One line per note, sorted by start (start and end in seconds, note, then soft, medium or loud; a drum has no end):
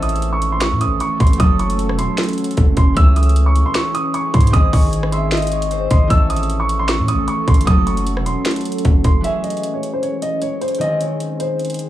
0.00 0.73 A1 loud
0.00 1.38 E3 medium
0.00 1.45 E3 medium
0.00 2.94 A3 medium
0.00 1.40 C#4 medium
0.00 4.50 C#4 medium
0.00 1.42 A4 loud
0.00 2.94 A4 medium
0.00 0.31 D#6 medium
0.00 closed hi-hat medium
0.09 closed hi-hat medium
0.16 closed hi-hat soft
0.22 closed hi-hat medium
0.33 0.49 C#6 medium
0.42 closed hi-hat medium
0.52 0.60 C6 medium
0.61 0.78 C#6 medium
0.61 finger snap medium
0.61 snare loud
0.61 closed hi-hat medium
0.72 0.88 A2 loud
0.81 0.98 D#6 medium
0.81 closed hi-hat medium
0.86 1.00 A1 loud
1.00 1.17 C#6 medium
1.00 closed hi-hat medium
1.20 1.39 A1 loud
1.20 1.37 C6 medium
1.20 kick loud
1.20 closed hi-hat soft
1.27 closed hi-hat medium
1.33 closed hi-hat medium
1.37 1.91 F#1 loud
1.37 3.02 F#3 medium
1.37 2.95 F#3 medium
1.37 2.96 C#4 medium
1.37 1.56 D#6 loud
1.37 kick loud
1.37 closed hi-hat medium
1.43 3.05 A4 loud
1.59 1.76 C#6 medium
1.59 closed hi-hat soft
1.59 open hi-hat medium
1.70 closed hi-hat medium
1.79 closed hi-hat medium
1.89 2.08 E1 loud
1.89 cross-stick medium
1.99 2.73 C6 medium
1.99 closed hi-hat medium
2.18 finger snap medium
2.18 snare loud
2.18 closed hi-hat medium
2.23 closed hi-hat medium
2.29 closed hi-hat medium
2.33 closed hi-hat soft
2.38 closed hi-hat medium
2.44 closed hi-hat medium
2.51 closed hi-hat medium
2.57 2.76 F#1 loud
2.57 kick loud
2.57 closed hi-hat medium
2.77 2.96 F#1 loud
2.77 2.94 C6 medium
2.77 kick loud
2.77 closed hi-hat medium
2.94 3.63 C#2 loud
2.94 4.58 E3 medium
2.94 4.52 E3 medium
2.94 6.07 G#3 medium
2.94 4.59 C#4 medium
2.94 6.07 G#4 medium
2.94 3.13 E6 loud
2.94 kick loud
2.94 closed hi-hat medium
2.99 4.55 G#4 medium
3.16 3.44 D#6 medium
3.16 closed hi-hat medium
3.23 closed hi-hat medium
3.29 closed hi-hat soft
3.36 closed hi-hat medium
3.46 3.63 C#6 medium
3.56 closed hi-hat medium
3.66 3.74 C6 medium
3.75 3.92 C#6 medium
3.75 finger snap medium
3.75 snare loud
3.75 closed hi-hat medium
3.95 4.11 D#6 medium
3.95 closed hi-hat medium
4.14 4.31 C#6 medium
4.14 closed hi-hat medium
4.34 4.53 G#2 loud
4.34 4.51 C6 medium
4.34 kick loud
4.34 closed hi-hat soft
4.41 closed hi-hat medium
4.47 6.15 D#3 medium
4.47 closed hi-hat medium
4.53 4.72 G#1 loud
4.53 6.09 D#3 medium
4.53 6.16 C4 medium
4.53 6.09 C4 medium
4.53 6.19 G#4 medium
4.53 4.70 D#6 loud
4.53 kick loud
4.53 closed hi-hat medium
4.73 5.87 G#1 loud
4.73 4.90 C#6 medium
4.73 kick loud
4.73 open hi-hat medium
4.93 closed hi-hat medium
5.03 cross-stick loud
5.12 5.38 E5 medium
5.12 5.87 C6 medium
5.12 closed hi-hat medium
5.31 5.90 D#5 medium
5.31 finger snap loud
5.31 snare loud
5.31 closed hi-hat soft
5.37 closed hi-hat medium
5.42 closed hi-hat medium
5.47 closed hi-hat medium
5.51 5.77 C#5 medium
5.51 closed hi-hat medium
5.62 closed hi-hat medium
5.71 6.16 C5 medium
5.71 closed hi-hat medium
5.90 6.10 G#1 loud
5.90 6.13 D#5 medium
5.90 6.07 C6 medium
5.90 kick loud
5.90 closed hi-hat medium
6.07 7.01 A1 loud
6.07 7.72 E3 medium
6.07 7.66 E3 medium
6.07 9.21 A3 medium
6.07 7.67 C#4 medium
6.07 9.21 C#4 medium
6.07 7.66 A4 medium
6.07 6.27 E6 loud
6.07 kick loud
6.07 closed hi-hat medium
6.13 7.70 A4 medium
6.30 6.58 D#6 medium
6.30 closed hi-hat medium
6.36 closed hi-hat medium
6.43 closed hi-hat soft
6.50 closed hi-hat medium
6.60 6.77 C#6 medium
6.69 closed hi-hat medium
6.79 6.87 C6 medium
6.88 7.05 C#6 medium
6.88 finger snap medium
6.88 snare loud
6.88 closed hi-hat medium
6.99 7.15 A2 loud
7.08 7.25 D#6 medium
7.08 closed hi-hat medium
7.14 7.27 A1 loud
7.28 7.45 C#6 medium
7.28 closed hi-hat medium
7.47 7.66 A1 loud
7.47 7.64 C6 medium
7.47 kick loud
7.47 closed hi-hat soft
7.54 closed hi-hat medium
7.61 closed hi-hat medium
7.65 8.18 F#1 loud
7.65 9.29 F#3 medium
7.65 9.23 F#3 medium
7.65 9.23 C#4 medium
7.65 9.23 A4 medium
7.65 7.84 D#6 loud
7.65 kick loud
7.65 closed hi-hat medium
7.70 9.32 A4 loud
7.87 8.03 C#6 medium
7.87 closed hi-hat soft
7.87 open hi-hat medium
7.97 closed hi-hat medium
8.07 closed hi-hat medium
8.17 8.35 E1 loud
8.17 cross-stick medium
8.26 9.00 C6 medium
8.26 closed hi-hat medium
8.45 finger snap medium
8.45 snare loud
8.45 closed hi-hat medium
8.51 closed hi-hat medium
8.56 closed hi-hat medium
8.61 closed hi-hat soft
8.65 closed hi-hat medium
8.72 closed hi-hat medium
8.78 closed hi-hat medium
8.85 9.04 F#1 loud
8.85 kick loud
8.85 closed hi-hat medium
9.04 9.23 F#1 loud
9.04 9.21 C6 medium
9.04 kick loud
9.04 closed hi-hat medium
9.21 10.86 E3 medium
9.21 10.79 E3 medium
9.21 10.79 G#3 medium
9.21 10.87 C#4 medium
9.21 10.79 C#4 medium
9.21 11.89 G#4 medium
9.21 9.41 E5 loud
9.21 closed hi-hat medium
9.26 10.83 G#4 medium
9.44 9.72 D#5 medium
9.44 closed hi-hat medium
9.50 closed hi-hat medium
9.57 closed hi-hat soft
9.63 closed hi-hat medium
9.74 9.90 C#5 medium
9.83 closed hi-hat medium
9.93 10.01 C5 medium
10.03 10.19 C#5 medium
10.03 closed hi-hat medium
10.22 10.39 D#5 medium
10.22 closed hi-hat medium
10.42 10.58 C#5 medium
10.42 closed hi-hat medium
10.61 10.78 C5 medium
10.61 closed hi-hat soft
10.68 closed hi-hat medium
10.75 11.89 D#3 medium
10.75 closed hi-hat medium
10.81 11.89 D#3 medium
10.81 11.89 G#3 medium
10.81 11.89 C4 medium
10.81 11.89 G#4 medium
10.81 10.98 D#5 loud
10.81 closed hi-hat medium
11.01 11.17 C#5 medium
11.01 closed hi-hat medium
11.20 closed hi-hat medium
11.40 11.89 C5 medium
11.40 closed hi-hat medium
11.59 closed hi-hat soft
11.65 closed hi-hat soft
11.70 closed hi-hat medium
11.74 closed hi-hat medium
11.79 closed hi-hat medium